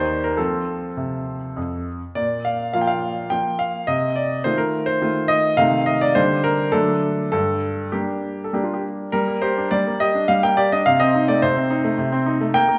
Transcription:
0.00 0.37 D#2 soft
0.00 0.35 A#3 soft
0.00 0.35 D#4 soft
0.00 0.35 G4 soft
0.00 0.24 C5 medium
0.24 0.39 A#4 medium
0.37 0.80 F3 soft
0.37 0.86 C4 soft
0.37 0.86 F4 soft
0.37 1.86 A4 medium
0.97 1.39 C3 soft
1.56 1.98 F2 soft
2.15 2.72 A#2 soft
2.15 2.45 D5 medium
2.45 2.72 F5 medium
2.73 3.27 F3 soft
2.73 3.27 A#3 soft
2.73 3.27 F4 soft
2.73 2.81 F5 medium
2.81 2.88 G5 medium
2.87 3.31 F5 medium
3.30 3.84 F3 soft
3.30 3.84 A#3 soft
3.30 3.84 F4 soft
3.30 3.59 G5 medium
3.59 3.88 F5 medium
3.87 4.43 C3 soft
3.87 4.16 D#5 medium
4.16 4.45 D5 medium
4.44 4.98 D#3 soft
4.44 4.98 A3 soft
4.44 4.98 F4 soft
4.44 4.59 C5 medium
4.58 4.87 A#4 medium
4.86 5.29 C5 medium
5.01 5.54 D#3 soft
5.01 5.54 A3 soft
5.01 5.54 F4 soft
5.28 5.57 D#5 medium
5.57 6.13 C3 medium
5.57 6.11 D#3 soft
5.57 6.11 A3 soft
5.57 6.12 D#4 soft
5.57 5.86 F5 medium
5.86 6.01 D#5 medium
6.01 6.15 D5 medium
6.15 6.71 D3 medium
6.15 6.69 G3 soft
6.15 6.69 D4 soft
6.15 6.44 C5 medium
6.44 6.73 A#4 medium
6.72 7.30 D3 medium
6.72 7.28 F#3 soft
6.72 7.28 A3 soft
6.72 7.29 D4 soft
6.72 7.30 A4 medium
7.32 7.91 G2 soft
7.32 7.92 A4 medium
7.92 8.48 G3 soft
7.92 8.49 A#3 soft
7.92 8.49 D4 soft
7.92 8.44 G4 soft
8.44 8.54 A4 soft
8.53 9.09 G3 soft
8.53 9.09 A#3 soft
8.53 9.10 D4 soft
8.53 8.63 G4 soft
8.64 8.73 F4 soft
8.74 8.83 G4 soft
9.12 9.70 G3 medium
9.12 9.42 A#4 medium
9.28 9.51 A#3 soft
9.42 9.66 G4 soft
9.42 9.71 C5 medium
9.57 9.81 D4 soft
9.71 10.27 G3 soft
9.71 10.00 D5 medium
9.87 10.10 A#3 soft
10.00 10.24 G4 soft
10.00 10.29 D#5 medium
10.15 10.38 D4 soft
10.28 10.84 G3 soft
10.28 10.43 F5 medium
10.43 10.66 A#3 soft
10.43 10.58 G5 medium
10.57 10.80 G4 soft
10.57 10.71 D5 medium
10.72 10.86 D4 soft
10.72 10.86 D#5 medium
10.86 11.41 C3 medium
10.86 11.00 F5 medium
11.00 11.23 C4 soft
11.00 11.28 D#5 medium
11.15 11.37 D#4 soft
11.28 11.51 A3 soft
11.28 11.42 D5 medium
11.42 11.97 C3 medium
11.42 12.27 C5 medium
11.57 11.79 C4 soft
11.70 11.93 D#4 medium
11.84 12.07 A3 soft
11.98 12.53 C3 medium
12.12 12.35 C4 medium
12.26 12.49 D#4 medium
12.41 12.55 A3 medium
12.54 12.67 A#3 medium
12.54 12.79 G5 loud
12.68 12.79 A#3 medium

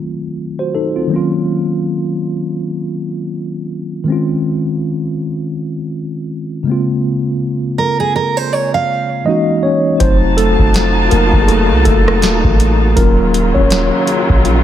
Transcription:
0.00 1.05 D#3 medium
0.00 1.06 F#3 medium
0.00 1.08 A3 medium
0.00 0.97 C4 medium
0.00 0.96 F4 medium
0.59 0.74 F#4 soft
0.59 0.74 C5 medium
0.75 0.95 D#4 medium
0.75 0.95 A4 medium
0.96 1.31 C4 medium
0.96 1.15 F4 medium
1.07 4.02 D#3 medium
1.07 4.03 F#3 medium
1.12 4.04 A#3 medium
1.12 4.05 C#4 medium
1.16 4.06 F4 medium
4.04 6.61 D#3 medium
4.04 6.62 G#3 medium
4.08 6.63 C4 medium
4.08 6.64 C#4 medium
4.12 6.65 F4 medium
6.63 9.20 C#3 medium
6.63 9.21 G#3 medium
6.67 9.22 A#3 medium
6.67 9.24 C4 medium
6.72 9.25 F4 medium
7.78 7.99 A#4 medium
8.00 8.15 G#4 medium
8.16 8.37 A#4 medium
8.37 8.53 C5 medium
8.53 8.73 C#5 medium
8.74 9.24 F5 medium
9.25 10.00 E3 medium
9.25 10.00 G#3 medium
9.25 10.01 A#3 medium
9.25 9.64 C#4 medium
9.25 9.62 D#4 medium
9.25 9.64 D#5 loud
9.29 10.02 F#4 medium
9.63 9.99 C#4 medium
9.63 10.01 C#5 medium
10.00 10.57 F1 loud
10.00 10.52 F#3 medium
10.00 10.38 A3 medium
10.00 10.18 C4 medium
10.00 12.94 D#4 medium
10.00 10.53 D#4 medium
10.00 12.94 F4 medium
10.00 12.94 F#4 medium
10.00 10.17 C5 loud
10.00 12.94 A5 medium
10.00 kick loud
10.00 closed hi-hat medium
10.37 11.08 A3 medium
10.37 11.11 A4 loud
10.37 closed hi-hat medium
10.59 11.09 F1 loud
10.59 kick medium
10.74 snare loud
10.74 closed hi-hat medium
11.11 11.32 F1 loud
11.11 11.45 F#3 medium
11.11 11.41 A#3 medium
11.11 11.45 D#4 medium
11.11 11.45 A4 soft
11.11 11.40 A#4 loud
11.11 closed hi-hat medium
11.33 11.72 F1 loud
11.33 kick medium
11.42 11.48 G#4 medium
11.48 11.84 A3 medium
11.48 11.84 A4 medium
11.48 closed hi-hat medium
11.71 11.85 C2 loud
11.85 12.24 F1 loud
11.85 12.93 A3 medium
11.85 13.00 A4 loud
11.85 kick loud
11.85 closed hi-hat medium
12.08 cross-stick loud
12.22 12.43 D#1 medium
12.22 snare loud
12.22 closed hi-hat medium
12.44 12.95 A1 loud
12.44 kick loud
12.60 closed hi-hat medium
12.96 13.53 D#1 loud
12.96 14.63 C#3 medium
12.96 14.63 D#3 medium
12.96 14.04 F#3 medium
12.96 14.63 F#3 medium
12.96 13.52 A#3 medium
12.96 13.55 C#4 medium
12.96 14.63 F4 medium
12.96 14.04 F4 medium
12.96 13.57 A#4 medium
12.96 kick loud
12.96 closed hi-hat medium
13.34 closed hi-hat medium
13.54 13.91 D#1 loud
13.54 14.44 C#4 medium
13.54 14.62 C#5 loud
13.54 kick medium
13.70 snare loud
13.70 closed hi-hat medium
14.07 closed hi-hat medium
14.29 14.63 A#1 loud
14.29 kick medium
14.45 14.63 F#3 medium
14.45 14.63 C#4 soft
14.45 14.63 F4 medium
14.45 closed hi-hat medium

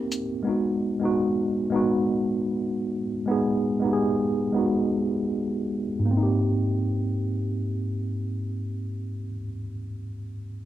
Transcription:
0.00 0.47 A#3 loud
0.00 0.47 C4 medium
0.00 0.47 D#4 medium
0.00 0.18 G4 medium
0.00 0.48 A#4 medium
0.12 closed hi-hat soft
0.12 shaker soft
0.43 0.95 G#3 medium
0.43 0.96 B3 medium
0.47 0.97 D#4 medium
0.47 0.98 F#4 medium
0.99 1.64 G#3 medium
0.99 1.65 B3 medium
0.99 1.66 D#4 medium
1.05 1.67 F#4 medium
1.70 2.99 G#3 medium
1.70 3.00 B3 medium
1.70 3.01 D#4 medium
1.76 3.02 F#4 medium
3.26 3.77 G#3 medium
3.26 3.78 B3 medium
3.26 3.79 D#4 medium
3.31 3.80 G#4 medium
3.80 4.46 G#3 medium
3.80 4.47 B3 medium
3.84 4.48 D#4 medium
3.84 3.91 G4 medium
3.93 4.52 G#4 medium
4.52 5.81 G#3 medium
4.52 5.82 B3 medium
4.56 5.83 D#4 medium
4.56 5.84 F#4 medium
5.99 9.17 G#2 medium
6.05 9.23 A#3 medium
6.11 9.29 C4 medium
6.17 9.35 D#4 medium
6.23 9.40 G4 medium

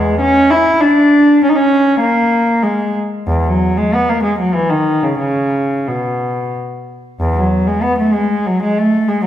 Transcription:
0.00 0.16 E2 soft
0.00 0.20 G#3 medium
0.20 0.50 C#4 medium
0.51 0.81 E4 medium
0.81 1.42 D4 medium
1.43 1.49 C#4 medium
1.50 1.56 D#4 soft
1.56 2.03 C#4 medium
2.01 2.61 A#3 medium
2.63 2.95 G#3 medium
3.27 3.44 E2 medium
3.45 3.76 F#3 medium
3.78 3.92 G#3 medium
3.94 4.08 B3 medium
4.09 4.24 A#3 medium
4.23 4.38 G#3 medium
4.39 4.54 F#3 soft
4.54 4.70 E3 medium
4.70 5.03 D#3 soft
5.03 5.18 C#3 soft
5.20 5.86 C#3 soft
5.87 6.54 B2 soft
7.20 7.36 E2 medium
7.35 7.67 F#3 soft
7.67 7.83 G#3 medium
7.82 7.99 B3 medium
7.99 8.14 A3 medium
8.14 8.46 G#3 medium
8.47 8.63 F#3 medium
8.63 8.78 G#3 soft
8.78 9.09 A3 medium
9.08 9.24 G#3 medium
9.23 9.27 F#3 soft

